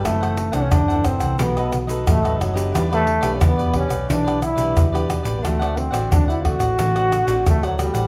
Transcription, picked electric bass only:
\new Staff \with { instrumentName = "Picked electric bass" } { \clef bass \time 4/4 \key d \major \tempo 4 = 89 fis,,8. c,16 fis,,8. c,16 b,,8 b,,8 a,,8 fis,,8 | e,8. b,,16 e,8. b,,16 b,,8. b,,16 e,8. a,,16 | d,8. a,,16 d,8. a,,16 a,,8. a,,16 d,8. a,,16 | }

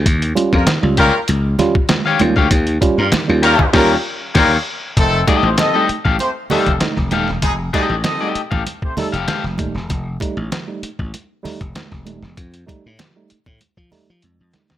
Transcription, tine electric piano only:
\new Staff \with { instrumentName = "Tine electric piano" } { \time 4/4 \key f \mixolydian \tempo 4 = 97 ees16 r16 <g des' f'>16 <des' f'>16 ees16 <g des' f'>16 <des' f'>16 r8. <g des' f'>16 r16 <des' f'>16 ees16 <g des' f'>16 r16 | ees16 r16 <g des' f'>16 <des' f'>16 ees16 <g des' f'>16 <des' f'>16 r16 <g des' f'>8 r4. | f16 r16 <g a ees'>16 <a ees'>16 f16 <g a ees'>16 <a ees'>16 r8. <g a ees'>16 r16 <a ees'>16 f16 <a ees'>16 r16 | f16 r16 <g a ees'>16 <a ees'>16 f16 <g a ees'>16 <a ees'>16 r8. <g a ees'>16 r16 <a ees'>16 f16 <g a ees'>16 r16 |
f16 r16 <g a ees'>16 <a ees'>16 f16 <g a ees'>16 <a ees'>16 r8. <g a ees'>16 r16 <a ees'>16 f16 <g a ees'>16 r16 | f16 r16 <g a ees'>16 <a ees'>16 f16 <g a ees'>16 <a ees'>16 r8. <g a ees'>16 r16 <a ees'>16 f16 <g a ees'>16 r16 | }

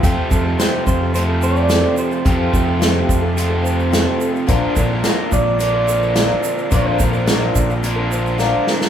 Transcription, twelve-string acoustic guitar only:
\new Staff \with { instrumentName = "Twelve-string acoustic guitar" } { \time 4/4 \key f \major \tempo 4 = 108 <f c' g' a'>8 <f c' g' a'>16 <c' g' a'>16 <f c' g' a'>8. <c' g' a'>8 <c' g' a'>16 <f c' g' a'>8 <f c' g' a'>8 <f c' g' a'>16 <c' g' a'>16 | <f c' g' a'>8 <f c' g' a'>16 <c' g' a'>16 <f c' g' a'>8. <c' g' a'>8 <c' g' a'>16 <f c' g' a'>8 <f c' g' a'>8 <f c' g' a'>16 <c' g' a'>16 | <bes, d f c' d' bes'>8 <f c' d' bes'>16 <f c' d' bes'>16 <bes, d f c' d' bes'>8. <f c' d' bes'>8 <f c' d' bes'>16 <f c' d' bes'>8 <bes, d f c' d' bes'>8 <f c' d' bes'>16 <f c' d' bes'>16 | <bes, d f c' d' bes'>8 <f c' d' bes'>16 <f c' d' bes'>16 <bes, d f c' d' bes'>8. <f c' d' bes'>8 <f c' d' bes'>16 <f c' d' bes'>8 <bes, d f c' d' bes'>8 <f c' d' bes'>16 <f c' d' bes'>16 | }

